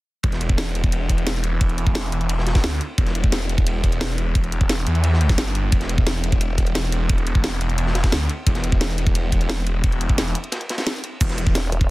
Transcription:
0.23 E1, kick, closed hi-hat, ride
0.32 snare, closed hi-hat
0.41 closed hi-hat, ride
0.49 kick
0.58 E1, snare, closed hi-hat, ride
0.75 closed hi-hat, ride
0.84 kick, closed hi-hat
0.92 closed hi-hat, ride
1.09 kick, closed hi-hat, ride
1.18 closed hi-hat, ride
1.27 snare, closed hi-hat, ride
1.43 closed hi-hat, ride
1.61 kick, closed hi-hat, ride
1.69 closed hi-hat
1.78 closed hi-hat, ride
1.87 kick
1.95 E1, snare, closed hi-hat, ride
2.12 E1, closed hi-hat, ride
2.21 closed hi-hat
2.29 closed hi-hat, ride
2.38 snare
2.46 snare, closed hi-hat, ride
2.54 kick, snare, closed hi-hat, ride
2.64 D2, snare, closed hi-hat, ride
2.81 closed hi-hat, ride
2.98 E1, kick, closed hi-hat, ride
3.06 snare, closed hi-hat
3.15 closed hi-hat, ride
3.24 kick
3.32 E1, snare, closed hi-hat, ride
3.49 closed hi-hat, ride
3.58 kick, closed hi-hat
3.67 closed hi-hat, ride
3.84 kick, closed hi-hat, ride
3.92 closed hi-hat, ride
4.00 snare, closed hi-hat, ride
4.18 closed hi-hat, ride
4.35 kick, closed hi-hat, ride
4.44 closed hi-hat
4.52 closed hi-hat, ride
4.61 kick
4.69 E1, snare, closed hi-hat, ride
4.87 E2, closed hi-hat, ride
4.95 closed hi-hat
5.04 closed hi-hat, ride
5.13 snare
5.21 closed hi-hat, ride
5.29 kick, snare, closed hi-hat
5.38 G1, snare, closed hi-hat, ride
5.55 closed hi-hat, ride
5.72 E1, kick, closed hi-hat, ride
5.81 snare, closed hi-hat
5.89 closed hi-hat, ride
5.98 kick
6.07 E1, snare, closed hi-hat, ride
6.24 closed hi-hat, ride
6.32 kick, closed hi-hat
6.41 closed hi-hat, ride
6.58 kick, closed hi-hat, ride
6.66 closed hi-hat, ride
6.75 snare, closed hi-hat, ride
6.92 closed hi-hat, ride
7.09 kick, closed hi-hat, ride
7.18 closed hi-hat
7.27 closed hi-hat, ride
7.35 kick
7.44 E1, snare, closed hi-hat, ride
7.61 E1, closed hi-hat, ride
7.70 closed hi-hat
7.78 closed hi-hat, ride
7.87 snare
7.95 snare, closed hi-hat, ride
8.04 kick, snare, closed hi-hat, ride
8.12 D2, snare, closed hi-hat, ride
8.29 closed hi-hat, ride
8.46 E1, kick, closed hi-hat, ride
8.55 snare, closed hi-hat
8.64 closed hi-hat, ride
8.72 kick
8.81 E1, snare, closed hi-hat, ride
8.98 closed hi-hat, ride
9.07 kick, closed hi-hat
9.15 closed hi-hat, ride
9.32 kick, closed hi-hat, ride
9.41 closed hi-hat, ride
9.49 snare, closed hi-hat, ride
9.66 closed hi-hat, ride
9.84 kick, closed hi-hat, ride
9.92 closed hi-hat
10.01 closed hi-hat, ride
10.09 kick
10.18 E1, snare, closed hi-hat, ride
10.35 closed hi-hat, ride
10.44 closed hi-hat
10.52 snare, closed hi-hat, ride
10.61 closed hi-hat
10.69 snare, closed hi-hat, ride
10.78 snare, closed hi-hat, ride
10.86 snare, closed hi-hat, ride
11.04 closed hi-hat, ride
11.21 E1, kick, closed hi-hat, ride, crash, shaker
11.29 snare, closed hi-hat
11.37 closed hi-hat, ride, shaker
11.47 kick
11.55 E1, snare, closed hi-hat, ride, shaker
11.72 closed hi-hat, ride
11.81 kick, closed hi-hat

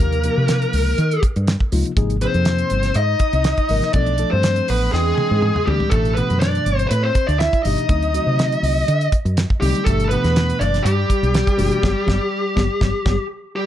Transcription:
Already playing: A#3 A#4
0.00 D#2 C3 F3 A#3 D#4 G4, kick
0.12 closed hi-hat
0.24 C3 F3 A#3 D#4 G4, closed hi-hat
0.38 C3
0.48 snare, closed hi-hat
0.62 closed hi-hat
0.73 C#2, open hi-hat
0.98 D#3, closed hi-hat
1.11 closed hi-hat
1.23 kick, closed hi-hat
1.36 G2, closed hi-hat
1.47 snare, closed hi-hat
1.60 kick
1.72 C#2 C3 F3 A#3 D#4 F4, open hi-hat
1.85 closed hi-hat
1.96 G#1 C3 F3 A#3 D#4 G#4, kick, closed hi-hat
2.10 closed hi-hat
2.21 C3 F3 A#3 C4 D#4 G#4 C5, closed hi-hat
2.34 F2, closed hi-hat
2.45 snare, closed hi-hat
2.58 closed hi-hat
2.70 G1, closed hi-hat
2.83 snare, closed hi-hat
2.94 G#2 D#4 D#5, closed hi-hat
3.19 kick, closed hi-hat
3.33 C2, closed hi-hat
3.44 snare, closed hi-hat
3.57 kick, closed hi-hat
3.69 G#1 C3 F3 A#3 D#4 A#4, open hi-hat
3.82 snare, closed hi-hat
3.93 B1 F3 A3 B3 D4 A4 D5, kick, closed hi-hat
4.06 closed hi-hat
4.18 F3 A3 D4 A4, closed hi-hat
4.31 G2 C4 C5
4.43 snare, closed hi-hat
4.56 closed hi-hat
4.68 A1 B3 B4, open hi-hat
4.92 E2 E3 G#3 C4 D4 G#4 G5, snare
5.18 high tom
5.31 G#2
5.42 mid tom
5.56 mid tom
5.66 D2 E3 G3 G#3 C4 D4 G4, floor tom
5.80 floor tom
5.90 A1 B2 E3 A3 D4 G4 A4, kick, closed hi-hat
6.05 closed hi-hat
6.15 B2 E3 A3 B3 D4 G4 B4, closed hi-hat
6.30 F#2, closed hi-hat
6.39 D4 D5, snare, closed hi-hat
6.55 closed hi-hat
6.66 G1, closed hi-hat
6.79 closed hi-hat
6.87 A2 C4 B4 C5, closed hi-hat
7.02 C4 C5
7.15 kick, closed hi-hat
7.27 D2 D4 D5, closed hi-hat
7.39 E4 E5, snare, closed hi-hat
7.53 kick, closed hi-hat
7.63 G1 B2 E3 A3 D4 D#4 G4 D#5, open hi-hat
7.78 closed hi-hat
7.88 D2 D3 F#3 A3 C4 D#4, kick, closed hi-hat
8.02 closed hi-hat
8.13 D3 F#3 A3 C4 F#4, closed hi-hat
8.27 C3
8.39 snare, closed hi-hat
8.52 closed hi-hat
8.63 C2, open hi-hat
8.88 D3, closed hi-hat
9.01 closed hi-hat
9.12 kick, closed hi-hat
9.25 F#2, closed hi-hat
9.37 snare, closed hi-hat
9.50 kick
9.61 C2 D3 F#3 G3 A3 C4 D#4 G4, open hi-hat
9.75 closed hi-hat
9.84 G1 B2 E3 A3 D4 G4 A4, kick, closed hi-hat
10.00 closed hi-hat
10.09 B2 E3 A3 B3 D4 G4 B4, closed hi-hat
10.24 E2, snare, closed hi-hat
10.36 snare, closed hi-hat
10.50 closed hi-hat
10.59 F#1 D4 D5, closed hi-hat
10.74 snare, closed hi-hat
10.83 G2 G3 G4, closed hi-hat
11.10 kick, closed hi-hat
11.23 B1, closed hi-hat
11.34 snare, closed hi-hat
11.47 kick, closed hi-hat
11.57 F#1 B2 E3 A3 D4 F#4, open hi-hat
11.72 closed hi-hat
11.82 G1 F#3 G3 B3, kick, snare
12.06 G1 F#3 G3 B3, kick, snare
12.55 G1 F#3 G3 B3, kick, snare
12.80 G1 F#3 G3 B3, kick, snare
13.05 G1 F#3 G3 B3, kick, snare
13.56 G3 G4

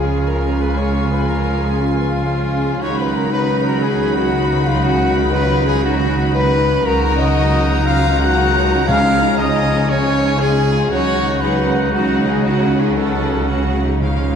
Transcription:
Already playing: C#2 C#3 F3 G#3 F4 G#4 F5 G#5
0.26 C#4 A#4 A#5
0.60 B4 B5
0.76 F3 G#3 C#5 C#6
1.11 B4 B5
1.28 F4 A#4 A#5
1.62 G#4 G#5
1.78 F3 G#3 C#4 F4 F5
1.97 B3
2.13 C#4
2.81 C#2 C#3 D#3 F#3 D#4 F4 C#5 F#5 B5 C#6
2.98 B4 B5
3.15 A#4 A#5
3.31 D#3 F#3 D#4 B4 B5
3.65 A#4 A#5
3.82 G#4 G#5
4.15 F#4 F#5
4.33 C#4
4.50 B3
4.66 D#4 F4 F5
4.83 D#3 F#3 C#4 F#4 F#5
5.00 B3
5.18 D#4
5.32 D#3 F#3 F4 B4 B5
5.66 G#4 G#5
5.83 D#3 F#3 D#4 F#4 F#5
6.01 C#4
6.18 D#4
6.34 D#3 F#3 B4 B5
6.84 C#2 C#3 D#3 F#3 D#4 F#4 A#4 F#5 A#5
7.18 D#5 D#6
7.85 D#3 F#3 F4 F5 F6
8.20 F#4 F#5 F#6
8.87 C#3 F3 G#3 C#4 F5 G#5 F6
9.05 F4
9.22 D#4
9.38 C#4 D#5 D#6
9.89 C#3 G#3 C#5 G#5 C#6
10.39 C#3 G#3 F4 G#4 G#5
10.58 D#4
10.74 F4
10.89 C#2 C#3 D#3 F#3 D#4 F#4 C#5 F#5 C#6
11.41 D#3 F#3 D#4 G#4 B4 F#5 B5
11.59 F#4
11.77 F4
11.92 D#3 F#3 D#4 F#4 F#5
12.27 G#4 G#5
12.44 D#3 F#3 D#4 F#4 F#5
12.70 F4
12.79 G#4 G#5
12.96 C#3 F#3 C#4 F#4 A4 F#5 A5
13.48 C#3 F#3 C#4 F#4 F#5
13.83 D#4 D#5
14.00 C#3 D#3 F3 G#3 C#4 D#4 F4 C#5 F5
14.17 C#3
14.23 C#3
14.30 C#3

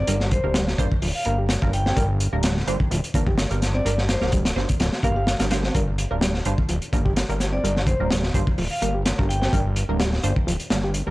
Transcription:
Already playing: D5
0.07 G1 G3 A#3 D4 A#4, closed hi-hat
0.20 snare
0.31 C5, kick, closed hi-hat
0.44 D1 G3 A#3 D4 A#4
0.54 G3, snare, closed hi-hat
0.68 snare
0.78 G1 G3 A#3 D4 C5, kick, closed hi-hat
0.92 kick
1.02 D1 F3, open hi-hat
1.15 F5
1.25 G1 G3 A#3 D4 A#4, closed hi-hat
1.39 G4
1.49 snare, closed hi-hat
1.62 G1 G3 A#3 D4 A#4, kick
1.73 G5, closed hi-hat
1.86 C4 G5, snare
1.97 G1 G3 A#3 D4 A#4, kick, closed hi-hat
2.20 closed hi-hat
2.33 D1 G3 A#3 D4 A#4
2.43 G3, snare, closed hi-hat
2.57 snare
2.67 G1 G3 A#3 D4 C5, closed hi-hat
2.80 kick
2.91 D1 F3, closed hi-hat
3.04 closed hi-hat
3.14 G1 G3 A#3 D4 A#4, kick, closed hi-hat
3.27 G4, kick
3.38 snare, closed hi-hat
3.51 G1 G3 A#3 D4 A#4, closed hi-hat
3.62 snare, closed hi-hat
3.74 C4 D5
3.85 G1 G3 A#3 D4 A#4, closed hi-hat
3.98 snare
4.09 C5, snare, closed hi-hat
4.21 D1 G3 A#3 D4 A#4, snare
4.32 G3, kick, closed hi-hat
4.45 snare, closed hi-hat
4.56 G1 G3 A#3 D4 C5, snare
4.69 kick, closed hi-hat
4.80 D1 F3, snare, closed hi-hat
4.93 snare
5.03 G1 G3 A#3 D4 A#4 F5, kick, closed hi-hat
5.16 G4 F5
5.27 snare, closed hi-hat
5.40 G1 G3 A#3 D4 A#4, snare, closed hi-hat
5.51 G3 A#3 D4 C5, snare, closed hi-hat
5.63 C4, snare
5.74 G1 G3 A#3 D4 A#4, kick, closed hi-hat
5.98 closed hi-hat
6.11 D1 G3 A#3 D4 A#4
6.21 G3, snare, closed hi-hat
6.34 snare
6.45 G1 G3 A#3 D4 C5, closed hi-hat
6.58 kick
6.69 D1 F3, closed hi-hat
6.82 closed hi-hat
6.93 G1 G3 A#3 D4 A#4, kick, closed hi-hat
7.05 G4, kick
7.16 snare, closed hi-hat
7.29 G1 G3 A#3 D4 A#4, closed hi-hat
7.40 snare, closed hi-hat
7.53 C4 D5
7.64 G1 G3 A#3 D4 A#4, closed hi-hat
7.76 snare
7.87 C5, kick, closed hi-hat
8.00 D1 G3 A#3 D4 A#4
8.11 G3, snare, closed hi-hat
8.23 snare
8.34 G1 G3 A#3 D4 C5, kick, closed hi-hat
8.47 kick
8.58 D1 F3, open hi-hat
8.71 F5
8.82 G1 G3 A#3 D4 A#4, closed hi-hat
8.94 G4
9.06 snare, closed hi-hat
9.18 G1 G3 A#3 D4 A#4, kick
9.29 G5, closed hi-hat
9.42 C4 G5, snare
9.53 G1 G3 A#3 D4 A#4, kick, closed hi-hat
9.76 closed hi-hat
9.89 D1 G3 A#3 D4 A#4
10.00 G3, snare, closed hi-hat
10.13 snare
10.23 G1 G3 A#3 D4 C5, closed hi-hat
10.36 kick
10.47 D1 F3, closed hi-hat
10.60 closed hi-hat
10.70 G1 G3 A#3 D4 A#4, snare, closed hi-hat
10.84 G4
10.94 closed hi-hat
11.07 G1 G3 A#3 D4 A#4

